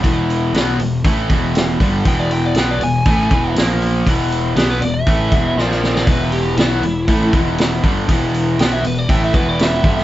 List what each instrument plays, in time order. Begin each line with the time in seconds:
Already playing: lead electric guitar E5
0.02 picked electric bass E1, overdriven electric guitar E2 B2 E3, kick, open hi-hat
0.30 open hi-hat
0.53 picked electric bass B1, overdriven electric guitar B2 F#3 B3, snare, open hi-hat
0.79 picked electric bass E1, overdriven electric guitar E2 B2, open hi-hat
1.05 picked electric bass A1, overdriven electric guitar A2 E3 A3, kick, open hi-hat
1.30 picked electric bass E1, overdriven electric guitar E2 B2 E3, kick, open hi-hat
1.55 snare, open hi-hat
1.80 picked electric bass G1, overdriven electric guitar G2 D3 G3, kick, open hi-hat
2.05 picked electric bass E1, overdriven electric guitar E2 B2 E3, lead electric guitar G5, kick, open hi-hat
2.19 lead electric guitar D5
2.31 lead electric guitar G5, open hi-hat
2.46 lead electric guitar D5
2.54 picked electric bass B1, overdriven electric guitar B2 F#3 B3, lead electric guitar G5, snare, open hi-hat
2.71 lead electric guitar D5
2.80 picked electric bass E1, overdriven electric guitar E2 B2, lead electric guitar G#5, open hi-hat
3.05 picked electric bass A1, overdriven electric guitar A2 E3 A3, kick, open hi-hat
3.31 picked electric bass E1, overdriven electric guitar E2 B2 E3, kick, open hi-hat
3.55 picked electric bass A#1, overdriven electric guitar A#2 F3 A#3, snare, open hi-hat
3.82 open hi-hat
4.07 picked electric bass E1, overdriven electric guitar E2 B2 E3, kick, open hi-hat
4.32 open hi-hat
4.56 picked electric bass B1, overdriven electric guitar B2 F#3 B3, lead electric guitar G4, snare, open hi-hat
4.71 lead electric guitar B4, snare
4.80 picked electric bass E1, overdriven electric guitar E2 B2, lead electric guitar D5, open hi-hat
4.94 lead electric guitar E5
5.07 picked electric bass A1, overdriven electric guitar A2 E3 A3, kick, open hi-hat
5.32 picked electric bass E1, overdriven electric guitar E2 B2 E3, kick, open hi-hat
5.56 picked electric bass A#1, overdriven electric guitar A#2 F3 A#3, snare
5.63 lead electric guitar D5
5.71 snare
5.84 snare
5.94 lead electric guitar D5, snare
6.06 picked electric bass E1, overdriven electric guitar E2 B2 E3, lead electric guitar B4, kick, open hi-hat
6.32 lead electric guitar G4, open hi-hat
6.57 picked electric bass B1, overdriven electric guitar B2 F#3 B3, lead electric guitar E4, snare, open hi-hat
6.81 picked electric bass E1, overdriven electric guitar E2 B2, open hi-hat
7.08 picked electric bass A1, overdriven electric guitar A2 E3 A3, kick, open hi-hat
7.33 picked electric bass E1, overdriven electric guitar E2 B2 E3, kick, open hi-hat
7.58 snare, open hi-hat
7.83 picked electric bass G1, overdriven electric guitar G2 D3 G3, kick, open hi-hat
8.08 picked electric bass E1, overdriven electric guitar E2 B2 E3, kick, open hi-hat
8.34 open hi-hat
8.59 picked electric bass B1, overdriven electric guitar B2 F#3 B3, lead electric guitar G5, snare, open hi-hat
8.73 lead electric guitar E5
8.83 picked electric bass E1, overdriven electric guitar E2 B2, open hi-hat
8.87 lead electric guitar B4
8.98 lead electric guitar D5
9.09 picked electric bass A1, overdriven electric guitar A2 E3 A3, lead electric guitar G5, kick, open hi-hat
9.24 lead electric guitar E5
9.34 picked electric bass E1, overdriven electric guitar E2 B2 E3, lead electric guitar B4, kick, open hi-hat
9.49 lead electric guitar D5
9.59 lead electric guitar E5, snare, open hi-hat
9.84 picked electric bass G1, overdriven electric guitar G2 D3 G3, kick, open hi-hat
9.98 snare